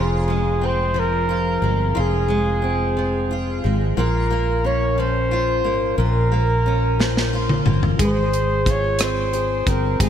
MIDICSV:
0, 0, Header, 1, 5, 480
1, 0, Start_track
1, 0, Key_signature, -4, "minor"
1, 0, Tempo, 669195
1, 1414, Time_signature, 6, 3, 24, 8
1, 7239, End_track
2, 0, Start_track
2, 0, Title_t, "Flugelhorn"
2, 0, Program_c, 0, 56
2, 0, Note_on_c, 0, 68, 69
2, 472, Note_on_c, 0, 72, 86
2, 483, Note_off_c, 0, 68, 0
2, 712, Note_on_c, 0, 70, 74
2, 723, Note_off_c, 0, 72, 0
2, 1423, Note_off_c, 0, 70, 0
2, 1431, Note_on_c, 0, 68, 72
2, 2354, Note_off_c, 0, 68, 0
2, 2864, Note_on_c, 0, 70, 75
2, 3344, Note_on_c, 0, 73, 76
2, 3354, Note_off_c, 0, 70, 0
2, 3582, Note_on_c, 0, 72, 71
2, 3593, Note_off_c, 0, 73, 0
2, 4287, Note_off_c, 0, 72, 0
2, 4291, Note_on_c, 0, 70, 73
2, 5224, Note_off_c, 0, 70, 0
2, 5769, Note_on_c, 0, 72, 79
2, 6247, Note_on_c, 0, 73, 82
2, 6257, Note_off_c, 0, 72, 0
2, 6471, Note_on_c, 0, 72, 71
2, 6481, Note_off_c, 0, 73, 0
2, 6950, Note_on_c, 0, 70, 59
2, 6961, Note_off_c, 0, 72, 0
2, 7182, Note_off_c, 0, 70, 0
2, 7192, Note_on_c, 0, 68, 72
2, 7239, Note_off_c, 0, 68, 0
2, 7239, End_track
3, 0, Start_track
3, 0, Title_t, "Steel-string acoustic guitar"
3, 0, Program_c, 1, 25
3, 0, Note_on_c, 1, 41, 64
3, 0, Note_on_c, 1, 65, 45
3, 199, Note_on_c, 1, 56, 46
3, 440, Note_on_c, 1, 60, 40
3, 675, Note_on_c, 1, 53, 46
3, 921, Note_off_c, 1, 65, 0
3, 924, Note_on_c, 1, 65, 45
3, 1153, Note_off_c, 1, 56, 0
3, 1161, Note_on_c, 1, 56, 42
3, 1389, Note_off_c, 1, 41, 0
3, 1396, Note_off_c, 1, 65, 0
3, 1397, Note_on_c, 1, 41, 58
3, 1399, Note_on_c, 1, 65, 49
3, 1629, Note_off_c, 1, 56, 0
3, 1638, Note_on_c, 1, 56, 48
3, 1870, Note_off_c, 1, 60, 0
3, 1879, Note_on_c, 1, 60, 38
3, 2125, Note_off_c, 1, 53, 0
3, 2128, Note_on_c, 1, 53, 45
3, 2368, Note_off_c, 1, 65, 0
3, 2371, Note_on_c, 1, 65, 44
3, 2602, Note_off_c, 1, 56, 0
3, 2610, Note_on_c, 1, 56, 43
3, 2846, Note_off_c, 1, 41, 0
3, 2848, Note_on_c, 1, 46, 59
3, 2849, Note_off_c, 1, 65, 0
3, 2852, Note_on_c, 1, 65, 53
3, 2894, Note_off_c, 1, 60, 0
3, 2900, Note_off_c, 1, 56, 0
3, 3088, Note_on_c, 1, 58, 49
3, 3331, Note_on_c, 1, 61, 44
3, 3567, Note_off_c, 1, 53, 0
3, 3570, Note_on_c, 1, 53, 50
3, 3807, Note_off_c, 1, 65, 0
3, 3810, Note_on_c, 1, 65, 48
3, 4039, Note_off_c, 1, 58, 0
3, 4048, Note_on_c, 1, 58, 48
3, 4279, Note_off_c, 1, 46, 0
3, 4287, Note_off_c, 1, 65, 0
3, 4287, Note_on_c, 1, 46, 58
3, 4289, Note_on_c, 1, 65, 45
3, 4522, Note_off_c, 1, 58, 0
3, 4530, Note_on_c, 1, 58, 47
3, 4767, Note_off_c, 1, 61, 0
3, 4775, Note_on_c, 1, 61, 42
3, 5014, Note_off_c, 1, 53, 0
3, 5017, Note_on_c, 1, 53, 52
3, 5255, Note_off_c, 1, 65, 0
3, 5258, Note_on_c, 1, 65, 43
3, 5482, Note_off_c, 1, 58, 0
3, 5490, Note_on_c, 1, 58, 43
3, 5729, Note_off_c, 1, 53, 0
3, 5730, Note_off_c, 1, 46, 0
3, 5732, Note_on_c, 1, 56, 62
3, 5733, Note_off_c, 1, 65, 0
3, 5736, Note_on_c, 1, 68, 46
3, 5780, Note_off_c, 1, 58, 0
3, 5782, Note_off_c, 1, 61, 0
3, 6222, Note_on_c, 1, 65, 36
3, 6455, Note_on_c, 1, 60, 46
3, 6684, Note_off_c, 1, 68, 0
3, 6693, Note_on_c, 1, 68, 45
3, 6929, Note_off_c, 1, 60, 0
3, 6938, Note_on_c, 1, 60, 44
3, 7169, Note_off_c, 1, 56, 0
3, 7173, Note_off_c, 1, 68, 0
3, 7178, Note_on_c, 1, 56, 61
3, 7185, Note_on_c, 1, 68, 55
3, 7239, Note_off_c, 1, 56, 0
3, 7239, Note_off_c, 1, 60, 0
3, 7239, Note_off_c, 1, 65, 0
3, 7239, Note_off_c, 1, 68, 0
3, 7239, End_track
4, 0, Start_track
4, 0, Title_t, "Fretless electric bass"
4, 0, Program_c, 2, 35
4, 0, Note_on_c, 2, 29, 88
4, 1144, Note_off_c, 2, 29, 0
4, 1162, Note_on_c, 2, 31, 61
4, 1394, Note_off_c, 2, 31, 0
4, 1414, Note_on_c, 2, 29, 79
4, 2585, Note_off_c, 2, 29, 0
4, 2617, Note_on_c, 2, 32, 68
4, 2841, Note_off_c, 2, 32, 0
4, 2851, Note_on_c, 2, 34, 70
4, 4054, Note_off_c, 2, 34, 0
4, 4054, Note_on_c, 2, 32, 69
4, 4279, Note_off_c, 2, 32, 0
4, 4290, Note_on_c, 2, 34, 89
4, 5463, Note_off_c, 2, 34, 0
4, 5493, Note_on_c, 2, 31, 63
4, 5719, Note_off_c, 2, 31, 0
4, 5734, Note_on_c, 2, 32, 87
4, 6905, Note_off_c, 2, 32, 0
4, 6934, Note_on_c, 2, 31, 68
4, 7159, Note_off_c, 2, 31, 0
4, 7173, Note_on_c, 2, 32, 73
4, 7239, Note_off_c, 2, 32, 0
4, 7239, End_track
5, 0, Start_track
5, 0, Title_t, "Drums"
5, 5024, Note_on_c, 9, 38, 49
5, 5096, Note_off_c, 9, 38, 0
5, 5145, Note_on_c, 9, 38, 48
5, 5217, Note_off_c, 9, 38, 0
5, 5375, Note_on_c, 9, 47, 56
5, 5447, Note_off_c, 9, 47, 0
5, 5493, Note_on_c, 9, 45, 68
5, 5565, Note_off_c, 9, 45, 0
5, 5615, Note_on_c, 9, 43, 65
5, 5687, Note_off_c, 9, 43, 0
5, 5733, Note_on_c, 9, 36, 81
5, 5734, Note_on_c, 9, 42, 71
5, 5805, Note_off_c, 9, 36, 0
5, 5806, Note_off_c, 9, 42, 0
5, 5978, Note_on_c, 9, 42, 37
5, 6050, Note_off_c, 9, 42, 0
5, 6214, Note_on_c, 9, 36, 65
5, 6218, Note_on_c, 9, 42, 42
5, 6285, Note_off_c, 9, 36, 0
5, 6290, Note_off_c, 9, 42, 0
5, 6446, Note_on_c, 9, 42, 66
5, 6460, Note_on_c, 9, 37, 78
5, 6518, Note_off_c, 9, 42, 0
5, 6532, Note_off_c, 9, 37, 0
5, 6695, Note_on_c, 9, 42, 35
5, 6767, Note_off_c, 9, 42, 0
5, 6934, Note_on_c, 9, 36, 72
5, 6936, Note_on_c, 9, 42, 38
5, 7006, Note_off_c, 9, 36, 0
5, 7008, Note_off_c, 9, 42, 0
5, 7173, Note_on_c, 9, 36, 78
5, 7176, Note_on_c, 9, 42, 67
5, 7239, Note_off_c, 9, 36, 0
5, 7239, Note_off_c, 9, 42, 0
5, 7239, End_track
0, 0, End_of_file